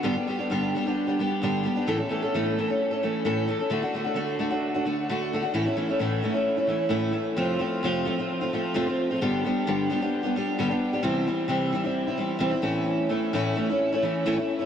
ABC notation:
X:1
M:4/4
L:1/16
Q:1/4=131
K:Amix
V:1 name="Steel-string acoustic guitar"
[G,,D,G,B,DG] [G,B,DG] [G,B,DG] [G,B,DG] [G,,D,G,B,DG]2 [G,B,DG] [G,B,DG]2 [G,B,DG] [G,B,DG]2 [G,,D,G,B,DG]2 [G,B,DG] [G,B,DG] | [A,,E,A,CA] [A,CA] [E,A,CA] [A,CA] [A,,E,A,CA]2 [E,A,CA] [A,CA]2 [A,CA] [E,A,CA]2 [A,,E,A,CA]2 [E,A,CA] [A,CA] | [D,A,DF] [A,DF] [D,A,DF] [A,DF] [D,A,DF]2 [D,A,DF] [A,DF]2 [A,DF] [D,A,DF]2 [D,A,DF]2 [D,A,DF] [A,DF] | [A,,E,A,CE] [A,CE] [E,A,CE] [A,CE] [A,,E,A,CE]2 [E,A,CE] [A,CE]2 [A,CE] [E,A,CE]2 [A,,E,A,CE]2 [E,A,CE]2 |
[=F,,=C,=F,A,=C=F]2 [F,A,CF]2 [F,,C,F,A,CF]2 [F,A,CF] [F,A,CF]2 [F,A,CF] [F,A,CF]2 [F,,C,F,A,CF] [F,A,CF]2 [F,A,CF] | [G,,D,G,B,DG]2 [G,B,DG]2 [G,,D,G,B,DG]2 [G,B,DG] [G,B,DG]2 [G,B,DG] [G,B,DG]2 [G,,D,G,B,DG] [G,B,DG]2 [G,B,DG] | [=C,E,G,=CE]2 [E,G,CE]2 [C,E,G,CE]2 [E,G,CE] [G,CE]2 [G,CE] [E,G,CE]2 [C,E,G,CE] [G,CE] [A,,E,A,^CE]2- | [A,,E,A,CE]2 [E,A,CE]2 [A,,E,A,CE]2 [E,A,CE] [A,CE]2 [A,CE] [E,A,CE]2 [A,,E,A,CE] [A,CE]2 [A,CE] |]